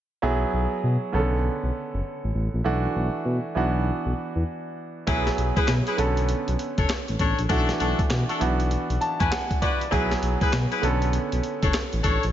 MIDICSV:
0, 0, Header, 1, 5, 480
1, 0, Start_track
1, 0, Tempo, 606061
1, 177, Time_signature, 4, 2, 24, 8
1, 9759, End_track
2, 0, Start_track
2, 0, Title_t, "Horn section"
2, 0, Program_c, 0, 61
2, 4014, Note_on_c, 0, 64, 93
2, 4017, Note_on_c, 0, 68, 85
2, 4018, Note_on_c, 0, 71, 96
2, 4180, Note_off_c, 0, 64, 0
2, 4182, Note_off_c, 0, 68, 0
2, 4182, Note_off_c, 0, 71, 0
2, 4406, Note_on_c, 0, 64, 77
2, 4408, Note_on_c, 0, 68, 78
2, 4410, Note_on_c, 0, 71, 84
2, 4519, Note_off_c, 0, 64, 0
2, 4520, Note_off_c, 0, 68, 0
2, 4520, Note_off_c, 0, 71, 0
2, 4646, Note_on_c, 0, 64, 71
2, 4648, Note_on_c, 0, 68, 69
2, 4651, Note_on_c, 0, 71, 78
2, 4759, Note_off_c, 0, 64, 0
2, 4760, Note_off_c, 0, 68, 0
2, 4761, Note_off_c, 0, 71, 0
2, 5366, Note_on_c, 0, 62, 72
2, 5368, Note_on_c, 0, 69, 67
2, 5370, Note_on_c, 0, 73, 76
2, 5479, Note_off_c, 0, 62, 0
2, 5480, Note_off_c, 0, 69, 0
2, 5481, Note_off_c, 0, 73, 0
2, 5696, Note_on_c, 0, 62, 74
2, 5697, Note_on_c, 0, 69, 68
2, 5700, Note_on_c, 0, 73, 79
2, 5861, Note_off_c, 0, 62, 0
2, 5862, Note_off_c, 0, 69, 0
2, 5863, Note_off_c, 0, 73, 0
2, 5936, Note_on_c, 0, 62, 94
2, 5938, Note_on_c, 0, 66, 88
2, 5941, Note_on_c, 0, 69, 99
2, 6101, Note_off_c, 0, 62, 0
2, 6102, Note_off_c, 0, 66, 0
2, 6103, Note_off_c, 0, 69, 0
2, 6174, Note_on_c, 0, 62, 78
2, 6176, Note_on_c, 0, 66, 70
2, 6179, Note_on_c, 0, 69, 78
2, 6340, Note_off_c, 0, 62, 0
2, 6341, Note_off_c, 0, 66, 0
2, 6343, Note_off_c, 0, 69, 0
2, 6565, Note_on_c, 0, 62, 72
2, 6568, Note_on_c, 0, 66, 71
2, 6570, Note_on_c, 0, 69, 84
2, 6678, Note_off_c, 0, 62, 0
2, 6679, Note_off_c, 0, 66, 0
2, 6680, Note_off_c, 0, 69, 0
2, 7286, Note_on_c, 0, 64, 70
2, 7289, Note_on_c, 0, 66, 61
2, 7291, Note_on_c, 0, 71, 76
2, 7399, Note_off_c, 0, 64, 0
2, 7400, Note_off_c, 0, 66, 0
2, 7401, Note_off_c, 0, 71, 0
2, 7614, Note_on_c, 0, 64, 77
2, 7617, Note_on_c, 0, 66, 70
2, 7618, Note_on_c, 0, 71, 76
2, 7780, Note_off_c, 0, 64, 0
2, 7781, Note_off_c, 0, 66, 0
2, 7782, Note_off_c, 0, 71, 0
2, 7851, Note_on_c, 0, 64, 93
2, 7854, Note_on_c, 0, 68, 90
2, 7855, Note_on_c, 0, 71, 102
2, 8019, Note_off_c, 0, 64, 0
2, 8020, Note_off_c, 0, 68, 0
2, 8021, Note_off_c, 0, 71, 0
2, 8244, Note_on_c, 0, 64, 82
2, 8245, Note_on_c, 0, 68, 74
2, 8248, Note_on_c, 0, 71, 89
2, 8357, Note_off_c, 0, 64, 0
2, 8358, Note_off_c, 0, 68, 0
2, 8360, Note_off_c, 0, 71, 0
2, 8484, Note_on_c, 0, 64, 75
2, 8485, Note_on_c, 0, 68, 68
2, 8489, Note_on_c, 0, 71, 81
2, 8598, Note_off_c, 0, 64, 0
2, 8598, Note_off_c, 0, 68, 0
2, 8600, Note_off_c, 0, 71, 0
2, 9204, Note_on_c, 0, 62, 71
2, 9207, Note_on_c, 0, 69, 64
2, 9210, Note_on_c, 0, 73, 81
2, 9318, Note_off_c, 0, 62, 0
2, 9319, Note_off_c, 0, 69, 0
2, 9321, Note_off_c, 0, 73, 0
2, 9533, Note_on_c, 0, 62, 78
2, 9534, Note_on_c, 0, 69, 75
2, 9538, Note_on_c, 0, 73, 80
2, 9699, Note_off_c, 0, 62, 0
2, 9700, Note_off_c, 0, 69, 0
2, 9702, Note_off_c, 0, 73, 0
2, 9759, End_track
3, 0, Start_track
3, 0, Title_t, "Grand piano"
3, 0, Program_c, 1, 0
3, 176, Note_on_c, 1, 54, 79
3, 178, Note_on_c, 1, 59, 70
3, 181, Note_on_c, 1, 64, 67
3, 184, Note_on_c, 1, 68, 83
3, 350, Control_c, 1, 64, 127
3, 883, Note_off_c, 1, 59, 0
3, 889, Note_on_c, 1, 49, 53
3, 895, Note_on_c, 1, 59, 60
3, 897, Note_off_c, 1, 54, 0
3, 899, Note_off_c, 1, 64, 0
3, 901, Note_off_c, 1, 68, 0
3, 901, Note_on_c, 1, 61, 61
3, 906, Control_c, 1, 64, 0
3, 908, Note_on_c, 1, 69, 69
3, 940, Note_on_c, 1, 50, 68
3, 958, Note_off_c, 1, 49, 0
3, 1059, Control_c, 1, 64, 127
3, 2072, Note_off_c, 1, 59, 0
3, 2075, Note_off_c, 1, 61, 0
3, 2079, Note_off_c, 1, 69, 0
3, 2094, Note_on_c, 1, 52, 73
3, 2095, Note_off_c, 1, 50, 0
3, 2097, Note_on_c, 1, 57, 67
3, 2101, Note_on_c, 1, 62, 69
3, 2103, Note_on_c, 1, 66, 81
3, 2109, Control_c, 1, 64, 0
3, 2225, Control_c, 1, 64, 127
3, 2798, Note_off_c, 1, 52, 0
3, 2809, Note_off_c, 1, 62, 0
3, 2810, Note_on_c, 1, 52, 70
3, 2816, Note_off_c, 1, 66, 0
3, 2816, Note_on_c, 1, 59, 57
3, 2817, Note_off_c, 1, 57, 0
3, 2821, Note_on_c, 1, 62, 61
3, 2828, Note_on_c, 1, 66, 74
3, 2829, Control_c, 1, 64, 0
3, 2984, Control_c, 1, 64, 127
3, 3990, Note_off_c, 1, 52, 0
3, 3993, Note_off_c, 1, 59, 0
3, 3995, Note_off_c, 1, 62, 0
3, 3999, Note_off_c, 1, 66, 0
3, 4013, Note_on_c, 1, 54, 75
3, 4016, Note_on_c, 1, 59, 69
3, 4020, Note_on_c, 1, 64, 65
3, 4023, Note_on_c, 1, 68, 84
3, 4028, Control_c, 1, 64, 0
3, 4165, Control_c, 1, 64, 127
3, 4723, Note_off_c, 1, 59, 0
3, 4728, Note_on_c, 1, 50, 67
3, 4735, Note_off_c, 1, 54, 0
3, 4735, Note_on_c, 1, 59, 59
3, 4739, Note_off_c, 1, 64, 0
3, 4740, Note_off_c, 1, 68, 0
3, 4741, Note_on_c, 1, 61, 64
3, 4749, Control_c, 1, 64, 0
3, 4749, Note_on_c, 1, 69, 71
3, 4879, Control_c, 1, 64, 127
3, 5909, Note_off_c, 1, 50, 0
3, 5912, Note_off_c, 1, 59, 0
3, 5915, Note_off_c, 1, 61, 0
3, 5919, Note_off_c, 1, 69, 0
3, 5933, Note_on_c, 1, 52, 81
3, 5937, Note_on_c, 1, 57, 72
3, 5940, Note_on_c, 1, 62, 66
3, 5944, Note_on_c, 1, 66, 88
3, 5947, Control_c, 1, 64, 0
3, 6105, Control_c, 1, 64, 127
3, 6638, Note_off_c, 1, 52, 0
3, 6650, Note_on_c, 1, 52, 69
3, 6651, Note_off_c, 1, 62, 0
3, 6655, Note_on_c, 1, 59, 58
3, 6657, Note_off_c, 1, 57, 0
3, 6657, Note_off_c, 1, 66, 0
3, 6663, Note_on_c, 1, 62, 63
3, 6669, Control_c, 1, 64, 0
3, 6669, Note_on_c, 1, 66, 75
3, 6804, Control_c, 1, 64, 127
3, 7136, Note_on_c, 1, 81, 66
3, 7277, Note_off_c, 1, 81, 0
3, 7287, Note_on_c, 1, 80, 76
3, 7371, Note_off_c, 1, 80, 0
3, 7376, Note_on_c, 1, 78, 73
3, 7600, Note_off_c, 1, 78, 0
3, 7617, Note_on_c, 1, 74, 72
3, 7830, Note_off_c, 1, 52, 0
3, 7832, Note_off_c, 1, 59, 0
3, 7836, Note_off_c, 1, 62, 0
3, 7839, Note_off_c, 1, 66, 0
3, 7840, Note_off_c, 1, 74, 0
3, 7848, Note_on_c, 1, 54, 81
3, 7853, Note_on_c, 1, 59, 74
3, 7855, Note_on_c, 1, 64, 73
3, 7859, Note_on_c, 1, 68, 87
3, 7867, Control_c, 1, 64, 0
3, 8013, Control_c, 1, 64, 127
3, 8560, Note_off_c, 1, 59, 0
3, 8565, Note_on_c, 1, 50, 70
3, 8572, Note_on_c, 1, 59, 64
3, 8573, Note_off_c, 1, 54, 0
3, 8576, Note_off_c, 1, 64, 0
3, 8579, Note_off_c, 1, 68, 0
3, 8579, Note_on_c, 1, 61, 65
3, 8585, Note_on_c, 1, 69, 74
3, 8588, Control_c, 1, 64, 0
3, 8704, Control_c, 1, 64, 127
3, 9747, Note_off_c, 1, 50, 0
3, 9751, Note_off_c, 1, 59, 0
3, 9754, Note_off_c, 1, 61, 0
3, 9757, Note_off_c, 1, 69, 0
3, 9759, End_track
4, 0, Start_track
4, 0, Title_t, "Analog synth bass"
4, 0, Program_c, 2, 38
4, 181, Note_on_c, 2, 35, 108
4, 353, Note_off_c, 2, 35, 0
4, 422, Note_on_c, 2, 35, 90
4, 529, Note_off_c, 2, 35, 0
4, 661, Note_on_c, 2, 47, 94
4, 769, Note_off_c, 2, 47, 0
4, 899, Note_on_c, 2, 35, 110
4, 1181, Note_off_c, 2, 35, 0
4, 1292, Note_on_c, 2, 35, 75
4, 1355, Note_off_c, 2, 35, 0
4, 1535, Note_on_c, 2, 30, 91
4, 1597, Note_off_c, 2, 30, 0
4, 1772, Note_on_c, 2, 33, 82
4, 1835, Note_off_c, 2, 33, 0
4, 1857, Note_on_c, 2, 33, 91
4, 1967, Note_off_c, 2, 33, 0
4, 2010, Note_on_c, 2, 34, 96
4, 2074, Note_off_c, 2, 34, 0
4, 2099, Note_on_c, 2, 35, 120
4, 2272, Note_off_c, 2, 35, 0
4, 2340, Note_on_c, 2, 35, 84
4, 2448, Note_off_c, 2, 35, 0
4, 2576, Note_on_c, 2, 47, 99
4, 2686, Note_off_c, 2, 47, 0
4, 2815, Note_on_c, 2, 35, 98
4, 3099, Note_off_c, 2, 35, 0
4, 3210, Note_on_c, 2, 35, 84
4, 3274, Note_off_c, 2, 35, 0
4, 3450, Note_on_c, 2, 40, 93
4, 3514, Note_off_c, 2, 40, 0
4, 4021, Note_on_c, 2, 35, 103
4, 4193, Note_off_c, 2, 35, 0
4, 4259, Note_on_c, 2, 35, 90
4, 4368, Note_off_c, 2, 35, 0
4, 4499, Note_on_c, 2, 47, 92
4, 4607, Note_off_c, 2, 47, 0
4, 4739, Note_on_c, 2, 35, 101
4, 5021, Note_off_c, 2, 35, 0
4, 5131, Note_on_c, 2, 35, 81
4, 5194, Note_off_c, 2, 35, 0
4, 5370, Note_on_c, 2, 30, 104
4, 5434, Note_off_c, 2, 30, 0
4, 5610, Note_on_c, 2, 33, 87
4, 5674, Note_off_c, 2, 33, 0
4, 5700, Note_on_c, 2, 33, 94
4, 5808, Note_off_c, 2, 33, 0
4, 5849, Note_on_c, 2, 34, 92
4, 5913, Note_off_c, 2, 34, 0
4, 5938, Note_on_c, 2, 35, 118
4, 6111, Note_off_c, 2, 35, 0
4, 6178, Note_on_c, 2, 35, 85
4, 6287, Note_off_c, 2, 35, 0
4, 6416, Note_on_c, 2, 47, 104
4, 6526, Note_off_c, 2, 47, 0
4, 6659, Note_on_c, 2, 35, 102
4, 6942, Note_off_c, 2, 35, 0
4, 7046, Note_on_c, 2, 35, 84
4, 7112, Note_off_c, 2, 35, 0
4, 7292, Note_on_c, 2, 40, 86
4, 7355, Note_off_c, 2, 40, 0
4, 7860, Note_on_c, 2, 35, 106
4, 8033, Note_off_c, 2, 35, 0
4, 8096, Note_on_c, 2, 35, 91
4, 8206, Note_off_c, 2, 35, 0
4, 8337, Note_on_c, 2, 47, 91
4, 8446, Note_off_c, 2, 47, 0
4, 8573, Note_on_c, 2, 35, 105
4, 8858, Note_off_c, 2, 35, 0
4, 8969, Note_on_c, 2, 35, 81
4, 9033, Note_off_c, 2, 35, 0
4, 9211, Note_on_c, 2, 30, 102
4, 9274, Note_off_c, 2, 30, 0
4, 9449, Note_on_c, 2, 33, 88
4, 9513, Note_off_c, 2, 33, 0
4, 9539, Note_on_c, 2, 33, 90
4, 9647, Note_off_c, 2, 33, 0
4, 9690, Note_on_c, 2, 34, 93
4, 9754, Note_off_c, 2, 34, 0
4, 9759, End_track
5, 0, Start_track
5, 0, Title_t, "Drums"
5, 4018, Note_on_c, 9, 36, 122
5, 4018, Note_on_c, 9, 42, 82
5, 4097, Note_off_c, 9, 42, 0
5, 4098, Note_off_c, 9, 36, 0
5, 4172, Note_on_c, 9, 38, 64
5, 4174, Note_on_c, 9, 42, 49
5, 4251, Note_off_c, 9, 38, 0
5, 4253, Note_off_c, 9, 42, 0
5, 4262, Note_on_c, 9, 42, 66
5, 4341, Note_off_c, 9, 42, 0
5, 4408, Note_on_c, 9, 36, 102
5, 4410, Note_on_c, 9, 42, 39
5, 4487, Note_off_c, 9, 36, 0
5, 4489, Note_off_c, 9, 42, 0
5, 4496, Note_on_c, 9, 42, 75
5, 4497, Note_on_c, 9, 39, 76
5, 4498, Note_on_c, 9, 38, 95
5, 4576, Note_off_c, 9, 39, 0
5, 4576, Note_off_c, 9, 42, 0
5, 4577, Note_off_c, 9, 38, 0
5, 4646, Note_on_c, 9, 42, 53
5, 4726, Note_off_c, 9, 42, 0
5, 4739, Note_on_c, 9, 42, 72
5, 4818, Note_off_c, 9, 42, 0
5, 4888, Note_on_c, 9, 42, 53
5, 4967, Note_off_c, 9, 42, 0
5, 4978, Note_on_c, 9, 42, 79
5, 5057, Note_off_c, 9, 42, 0
5, 5131, Note_on_c, 9, 42, 49
5, 5210, Note_off_c, 9, 42, 0
5, 5221, Note_on_c, 9, 42, 58
5, 5300, Note_off_c, 9, 42, 0
5, 5368, Note_on_c, 9, 42, 49
5, 5370, Note_on_c, 9, 36, 99
5, 5447, Note_off_c, 9, 42, 0
5, 5449, Note_off_c, 9, 36, 0
5, 5460, Note_on_c, 9, 39, 77
5, 5460, Note_on_c, 9, 42, 66
5, 5461, Note_on_c, 9, 38, 108
5, 5539, Note_off_c, 9, 42, 0
5, 5540, Note_off_c, 9, 38, 0
5, 5540, Note_off_c, 9, 39, 0
5, 5609, Note_on_c, 9, 42, 52
5, 5688, Note_off_c, 9, 42, 0
5, 5697, Note_on_c, 9, 42, 74
5, 5698, Note_on_c, 9, 36, 88
5, 5776, Note_off_c, 9, 42, 0
5, 5778, Note_off_c, 9, 36, 0
5, 5849, Note_on_c, 9, 42, 57
5, 5929, Note_off_c, 9, 42, 0
5, 5936, Note_on_c, 9, 42, 81
5, 5937, Note_on_c, 9, 36, 122
5, 6015, Note_off_c, 9, 42, 0
5, 6016, Note_off_c, 9, 36, 0
5, 6089, Note_on_c, 9, 38, 70
5, 6091, Note_on_c, 9, 42, 51
5, 6169, Note_off_c, 9, 38, 0
5, 6171, Note_off_c, 9, 42, 0
5, 6179, Note_on_c, 9, 42, 71
5, 6258, Note_off_c, 9, 42, 0
5, 6327, Note_on_c, 9, 36, 97
5, 6329, Note_on_c, 9, 42, 44
5, 6406, Note_off_c, 9, 36, 0
5, 6408, Note_off_c, 9, 42, 0
5, 6417, Note_on_c, 9, 42, 76
5, 6418, Note_on_c, 9, 38, 100
5, 6418, Note_on_c, 9, 39, 75
5, 6496, Note_off_c, 9, 42, 0
5, 6497, Note_off_c, 9, 39, 0
5, 6498, Note_off_c, 9, 38, 0
5, 6568, Note_on_c, 9, 42, 52
5, 6647, Note_off_c, 9, 42, 0
5, 6662, Note_on_c, 9, 42, 73
5, 6741, Note_off_c, 9, 42, 0
5, 6809, Note_on_c, 9, 42, 52
5, 6888, Note_off_c, 9, 42, 0
5, 6898, Note_on_c, 9, 42, 72
5, 6977, Note_off_c, 9, 42, 0
5, 7050, Note_on_c, 9, 42, 49
5, 7129, Note_off_c, 9, 42, 0
5, 7139, Note_on_c, 9, 42, 58
5, 7219, Note_off_c, 9, 42, 0
5, 7289, Note_on_c, 9, 36, 94
5, 7289, Note_on_c, 9, 42, 49
5, 7368, Note_off_c, 9, 42, 0
5, 7369, Note_off_c, 9, 36, 0
5, 7383, Note_on_c, 9, 39, 86
5, 7383, Note_on_c, 9, 42, 72
5, 7384, Note_on_c, 9, 38, 109
5, 7462, Note_off_c, 9, 39, 0
5, 7462, Note_off_c, 9, 42, 0
5, 7463, Note_off_c, 9, 38, 0
5, 7528, Note_on_c, 9, 36, 92
5, 7529, Note_on_c, 9, 42, 49
5, 7607, Note_off_c, 9, 36, 0
5, 7609, Note_off_c, 9, 42, 0
5, 7619, Note_on_c, 9, 36, 89
5, 7621, Note_on_c, 9, 42, 81
5, 7698, Note_off_c, 9, 36, 0
5, 7700, Note_off_c, 9, 42, 0
5, 7772, Note_on_c, 9, 42, 55
5, 7851, Note_off_c, 9, 42, 0
5, 7858, Note_on_c, 9, 36, 113
5, 7860, Note_on_c, 9, 42, 76
5, 7938, Note_off_c, 9, 36, 0
5, 7939, Note_off_c, 9, 42, 0
5, 8010, Note_on_c, 9, 38, 69
5, 8012, Note_on_c, 9, 42, 45
5, 8089, Note_off_c, 9, 38, 0
5, 8091, Note_off_c, 9, 42, 0
5, 8099, Note_on_c, 9, 42, 77
5, 8178, Note_off_c, 9, 42, 0
5, 8247, Note_on_c, 9, 36, 99
5, 8247, Note_on_c, 9, 42, 44
5, 8326, Note_off_c, 9, 36, 0
5, 8327, Note_off_c, 9, 42, 0
5, 8338, Note_on_c, 9, 42, 75
5, 8339, Note_on_c, 9, 39, 78
5, 8340, Note_on_c, 9, 38, 97
5, 8418, Note_off_c, 9, 39, 0
5, 8418, Note_off_c, 9, 42, 0
5, 8419, Note_off_c, 9, 38, 0
5, 8487, Note_on_c, 9, 42, 49
5, 8566, Note_off_c, 9, 42, 0
5, 8579, Note_on_c, 9, 42, 74
5, 8658, Note_off_c, 9, 42, 0
5, 8727, Note_on_c, 9, 42, 53
5, 8806, Note_off_c, 9, 42, 0
5, 8816, Note_on_c, 9, 42, 74
5, 8896, Note_off_c, 9, 42, 0
5, 8967, Note_on_c, 9, 42, 52
5, 9046, Note_off_c, 9, 42, 0
5, 9056, Note_on_c, 9, 42, 54
5, 9135, Note_off_c, 9, 42, 0
5, 9207, Note_on_c, 9, 42, 55
5, 9209, Note_on_c, 9, 36, 101
5, 9286, Note_off_c, 9, 42, 0
5, 9288, Note_off_c, 9, 36, 0
5, 9297, Note_on_c, 9, 39, 81
5, 9297, Note_on_c, 9, 42, 72
5, 9298, Note_on_c, 9, 38, 103
5, 9376, Note_off_c, 9, 39, 0
5, 9376, Note_off_c, 9, 42, 0
5, 9377, Note_off_c, 9, 38, 0
5, 9445, Note_on_c, 9, 42, 50
5, 9524, Note_off_c, 9, 42, 0
5, 9535, Note_on_c, 9, 42, 77
5, 9537, Note_on_c, 9, 36, 84
5, 9614, Note_off_c, 9, 42, 0
5, 9616, Note_off_c, 9, 36, 0
5, 9688, Note_on_c, 9, 42, 57
5, 9759, Note_off_c, 9, 42, 0
5, 9759, End_track
0, 0, End_of_file